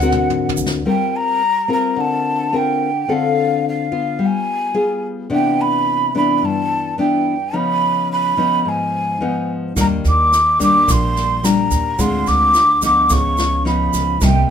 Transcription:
0.00 0.54 D2 medium
0.00 0.83 D3 medium
0.00 0.81 C4 medium
0.00 0.81 F#4 medium
0.00 0.81 A#4 medium
0.00 0.60 F#5 medium
0.00 shaker soft
0.12 mid tom soft
0.30 mid tom soft
0.49 floor tom medium
0.57 0.83 D2 medium
0.57 shaker medium
0.66 snare soft
0.85 1.94 G3 medium
0.85 1.41 C4 medium
0.85 1.41 F4 medium
0.85 1.41 A#4 medium
0.85 1.18 G5 medium
1.16 1.70 A#5 loud
1.68 2.48 C4 medium
1.68 2.48 F4 medium
1.68 2.48 A#4 medium
1.73 2.02 A#5 medium
1.96 3.05 D3 medium
2.00 2.58 A5 medium
2.53 2.88 C4 medium
2.53 2.89 F4 soft
2.53 2.89 A#4 medium
2.53 3.14 G5 medium
3.08 4.17 D3 medium
3.08 3.88 C4 medium
3.08 3.88 F4 medium
3.08 3.88 A4 medium
3.08 3.66 F5 medium
3.68 4.27 F5 medium
3.92 4.71 B3 medium
3.92 4.71 F4 medium
4.19 5.28 G3 medium
4.26 5.06 G#5 medium
4.74 5.26 B3 soft
4.74 5.26 F4 medium
4.74 5.26 G#4 medium
5.30 6.39 C3 medium
5.30 6.09 E3 medium
5.30 6.10 B3 medium
5.30 6.10 D4 medium
5.34 5.63 G5 medium
5.61 6.16 B5 loud
6.15 6.94 E3 medium
6.15 6.94 B3 medium
6.15 6.94 D4 medium
6.15 6.38 B5 medium
6.38 6.47 B5 medium
6.42 7.51 G2 medium
6.42 6.99 A5 loud
6.98 7.34 E3 medium
6.98 7.34 B3 medium
6.98 7.34 D4 medium
6.98 7.57 G5 medium
7.53 8.62 C#3 medium
7.53 8.33 F3 medium
7.53 8.33 B3 soft
7.53 8.33 D#4 medium
7.53 8.11 B5 loud
8.12 8.70 B5 medium
8.37 9.16 F3 medium
8.37 9.17 B3 medium
8.37 9.17 D#4 medium
8.65 9.74 G#2 medium
8.65 9.50 G#5 medium
9.21 9.72 F3 soft
9.21 9.73 B3 medium
9.21 9.73 D#4 medium
9.76 10.02 D#2 medium
9.76 10.85 D#3 medium
9.76 10.32 G3 medium
9.76 10.32 A#3 medium
9.76 10.33 D4 medium
9.76 kick medium
9.76 cross-stick medium
9.76 snare soft
9.76 shaker medium
9.80 9.86 A#5 medium
10.04 10.84 D#2 medium
10.04 snare soft
10.04 shaker soft
10.09 10.58 D6 medium
10.32 snare soft
10.32 shaker medium
10.59 11.39 G3 medium
10.59 11.39 A#3 medium
10.59 11.39 D4 medium
10.59 10.93 D6 loud
10.59 kick soft
10.59 snare soft
10.59 shaker medium
10.87 11.68 A#1 medium
10.87 11.96 A#2 medium
10.87 11.46 C6 loud
10.87 kick medium
10.87 cross-stick medium
10.87 snare soft
10.87 shaker medium
11.16 snare soft
11.16 shaker soft
11.43 11.95 G3 medium
11.43 11.95 A#3 soft
11.43 11.95 D4 medium
11.43 12.02 A#5 medium
11.43 cross-stick medium
11.43 snare soft
11.43 shaker medium
11.71 11.97 D#2 medium
11.71 kick soft
11.71 snare soft
11.71 shaker medium
11.98 12.25 D2 medium
11.98 13.07 D3 medium
11.98 12.54 G#3 medium
11.98 12.54 C4 medium
11.98 12.55 F4 medium
11.98 12.29 C6 loud
11.98 kick medium
11.98 snare soft
11.98 shaker medium
12.27 13.07 D2 medium
12.27 12.83 D6 loud
12.27 snare soft
12.27 shaker soft
12.54 cross-stick medium
12.54 snare soft
12.54 shaker medium
12.82 13.61 F3 medium
12.82 13.62 B3 medium
12.82 13.62 D#4 medium
12.82 13.14 D6 medium
12.82 kick soft
12.82 snare soft
12.82 shaker medium
13.10 13.90 C#2 medium
13.10 14.19 C#3 medium
13.10 13.66 C#6 loud
13.10 kick medium
13.10 snare soft
13.10 shaker medium
13.37 cross-stick medium
13.37 snare soft
13.37 shaker soft
13.65 14.17 F3 medium
13.65 14.17 B3 medium
13.65 14.17 D#4 medium
13.65 14.25 B5 medium
13.65 snare soft
13.93 14.20 C#2 medium
13.93 kick soft
13.93 snare soft
13.93 shaker medium
14.21 14.48 C2 medium
14.21 14.50 C3 medium
14.21 14.50 G3 medium
14.21 14.50 A#3 soft
14.21 14.50 D#4 medium
14.21 14.50 G5 medium
14.21 kick medium
14.21 cross-stick medium
14.21 snare soft
14.21 shaker medium

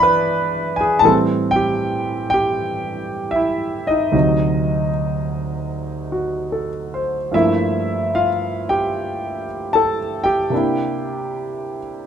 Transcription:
0.00 1.02 E2 soft
0.00 1.02 E3 soft
0.00 1.05 G#3 soft
0.00 1.06 D4 medium
0.00 1.07 E4 medium
0.00 0.76 B4 medium
0.00 1.06 D5 medium
0.00 1.06 E5 medium
0.00 0.79 B5 loud
0.76 1.01 G#5 medium
0.81 1.03 G#4 medium
0.99 4.13 A2 soft
0.99 4.13 E3 soft
0.99 1.12 A5 medium
1.05 4.14 G3 soft
1.05 4.15 C4 medium
1.05 1.17 A4 medium
1.51 2.28 G5 medium
1.56 2.29 G4 medium
2.30 3.32 G4 medium
2.30 3.37 G5 medium
3.31 3.88 E5 medium
3.36 3.85 E4 medium
3.87 4.12 D#4 medium
3.87 4.88 D#5 medium
4.12 7.32 D2 soft
4.12 7.33 C3 soft
4.12 7.33 F#3 soft
4.12 7.33 D#4 medium
6.12 6.69 F#4 soft
6.52 7.16 A4 soft
6.94 7.50 C5 soft
7.32 10.51 G2 soft
7.32 10.52 F3 soft
7.32 10.52 A3 soft
7.32 8.10 E4 medium
7.32 8.09 E5 medium
7.36 10.50 A#3 soft
8.15 8.27 F4 medium
8.15 8.27 F5 medium
8.69 9.45 G4 medium
8.69 9.44 G5 medium
9.73 9.98 A4 medium
9.73 9.97 A5 medium
10.24 11.78 G4 medium
10.24 11.77 G5 medium
10.50 12.07 C3 soft
10.50 12.07 A#3 soft
10.50 12.07 D4 soft
10.55 12.07 E4 medium

